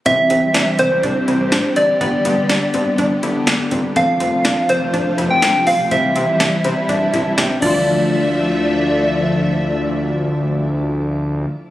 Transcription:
0.06 C2 E3 G3 C4 E4 G4 E5, kick, closed hi-hat
0.30 C2 C4, closed hi-hat
0.54 C2 D4, snare, closed hi-hat
0.79 C2 C4 C5, closed hi-hat
0.92 C2
1.03 C2 D4, kick, closed hi-hat
1.28 C2 E4, closed hi-hat
1.40 C2
1.52 A1 D4, snare, closed hi-hat
1.76 G1 C4 D5, closed hi-hat
2.01 G1 D3 B3 D4 G4 D5, kick, closed hi-hat
2.25 G2 B3, closed hi-hat
2.49 G1 D4, snare, closed hi-hat
2.74 G2 C4, closed hi-hat
2.98 G1 D4, kick, closed hi-hat
3.23 G1 B3 D4 E4 A4, closed hi-hat
3.47 G1 D4, snare, closed hi-hat
3.71 G1 C4, kick, closed hi-hat
3.96 F1 C3 F3 A3 C4 F4 A4 F5, kick, closed hi-hat
4.20 F1 C4, closed hi-hat
4.45 F1 D4, snare, closed hi-hat
4.69 F1 C4 C5, closed hi-hat
4.81 F1
4.93 F1 D4, kick, closed hi-hat
5.18 F1 E4, closed hi-hat
5.30 F1 G5
5.42 C2 D4, snare, closed hi-hat
5.67 B1 C4 F5, open hi-hat
5.91 C2 E3 G3 C4 E4 G4 E5, kick, closed hi-hat
6.16 C3 C4, closed hi-hat
6.40 C2 D4, snare, closed hi-hat
6.64 C3 C4 B5, closed hi-hat
6.89 C2 D4 A5, kick, closed hi-hat
7.13 C2 E4, kick, closed hi-hat
7.38 C2 C4 D4 E4 G4 G5, snare, closed hi-hat
7.60 D2 D3 F3 A3 D4 E4 D5 E5, kick, crash
7.64 F4
7.70 A4 D5

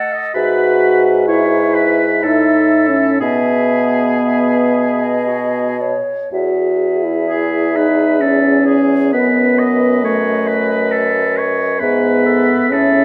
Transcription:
Already playing: A4 D#5 F#5
0.13 D#5
0.34 G#2 F#4 B4 E5
1.28 E4 B4 C#5 E5
1.74 B4
2.23 A2 D#4 A4 E5
2.88 C#4
3.20 B2 B3 G#4 E5
4.24 E5
5.03 D#5
5.28 F#4
5.81 C#5
6.32 E2 F#4 G#4 E5
7.05 E4
7.29 G#4
7.76 D#4 B4
8.21 C#4 A4
8.66 G#4
9.13 F#2 B3 B4 D#5
9.59 D#5
10.03 A3 C#5
10.47 B4
10.91 A4
11.37 C#5
11.80 G#2 B3 B4 E5
12.25 A4
12.71 A2 C#4 G#4 A4 E5

